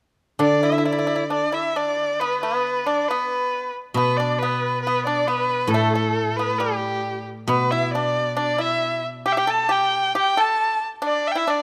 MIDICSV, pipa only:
0, 0, Header, 1, 2, 480
1, 0, Start_track
1, 0, Tempo, 896861
1, 221, Time_signature, 2, 2, 24, 8
1, 1180, Tempo, 874636
1, 3580, Tempo, 890208
1, 6299, End_track
2, 0, Start_track
2, 0, Title_t, "Pipa"
2, 0, Program_c, 0, 105
2, 211, Note_on_c, 0, 62, 59
2, 328, Note_off_c, 0, 62, 0
2, 337, Note_on_c, 0, 64, 54
2, 377, Note_off_c, 0, 64, 0
2, 385, Note_on_c, 0, 64, 42
2, 411, Note_off_c, 0, 64, 0
2, 418, Note_on_c, 0, 64, 46
2, 451, Note_off_c, 0, 64, 0
2, 457, Note_on_c, 0, 64, 41
2, 488, Note_off_c, 0, 64, 0
2, 494, Note_on_c, 0, 64, 48
2, 521, Note_off_c, 0, 64, 0
2, 527, Note_on_c, 0, 64, 43
2, 566, Note_off_c, 0, 64, 0
2, 572, Note_on_c, 0, 64, 48
2, 613, Note_off_c, 0, 64, 0
2, 619, Note_on_c, 0, 64, 43
2, 659, Note_off_c, 0, 64, 0
2, 698, Note_on_c, 0, 62, 56
2, 812, Note_off_c, 0, 62, 0
2, 815, Note_on_c, 0, 64, 54
2, 930, Note_off_c, 0, 64, 0
2, 942, Note_on_c, 0, 62, 55
2, 1162, Note_off_c, 0, 62, 0
2, 1183, Note_on_c, 0, 59, 63
2, 1293, Note_off_c, 0, 59, 0
2, 1303, Note_on_c, 0, 59, 58
2, 1525, Note_off_c, 0, 59, 0
2, 1542, Note_on_c, 0, 62, 58
2, 1653, Note_off_c, 0, 62, 0
2, 1674, Note_on_c, 0, 59, 61
2, 2004, Note_off_c, 0, 59, 0
2, 2150, Note_on_c, 0, 59, 63
2, 2254, Note_off_c, 0, 59, 0
2, 2273, Note_on_c, 0, 62, 59
2, 2376, Note_off_c, 0, 62, 0
2, 2398, Note_on_c, 0, 59, 60
2, 2611, Note_off_c, 0, 59, 0
2, 2643, Note_on_c, 0, 59, 62
2, 2742, Note_off_c, 0, 59, 0
2, 2751, Note_on_c, 0, 62, 54
2, 2855, Note_off_c, 0, 62, 0
2, 2867, Note_on_c, 0, 59, 58
2, 3084, Note_off_c, 0, 59, 0
2, 3121, Note_on_c, 0, 57, 65
2, 3220, Note_off_c, 0, 57, 0
2, 3237, Note_on_c, 0, 57, 57
2, 3452, Note_off_c, 0, 57, 0
2, 3478, Note_on_c, 0, 59, 55
2, 3583, Note_off_c, 0, 59, 0
2, 3592, Note_on_c, 0, 55, 58
2, 3930, Note_off_c, 0, 55, 0
2, 4071, Note_on_c, 0, 59, 66
2, 4183, Note_off_c, 0, 59, 0
2, 4196, Note_on_c, 0, 64, 62
2, 4306, Note_off_c, 0, 64, 0
2, 4320, Note_on_c, 0, 62, 63
2, 4537, Note_off_c, 0, 62, 0
2, 4544, Note_on_c, 0, 62, 68
2, 4659, Note_off_c, 0, 62, 0
2, 4662, Note_on_c, 0, 64, 58
2, 4889, Note_off_c, 0, 64, 0
2, 5024, Note_on_c, 0, 67, 71
2, 5080, Note_off_c, 0, 67, 0
2, 5086, Note_on_c, 0, 67, 73
2, 5139, Note_off_c, 0, 67, 0
2, 5141, Note_on_c, 0, 69, 72
2, 5255, Note_off_c, 0, 69, 0
2, 5258, Note_on_c, 0, 67, 67
2, 5487, Note_off_c, 0, 67, 0
2, 5506, Note_on_c, 0, 67, 74
2, 5619, Note_off_c, 0, 67, 0
2, 5626, Note_on_c, 0, 69, 66
2, 5848, Note_off_c, 0, 69, 0
2, 5974, Note_on_c, 0, 62, 74
2, 6144, Note_off_c, 0, 62, 0
2, 6155, Note_on_c, 0, 64, 68
2, 6213, Note_off_c, 0, 64, 0
2, 6220, Note_on_c, 0, 62, 61
2, 6299, Note_off_c, 0, 62, 0
2, 6299, End_track
0, 0, End_of_file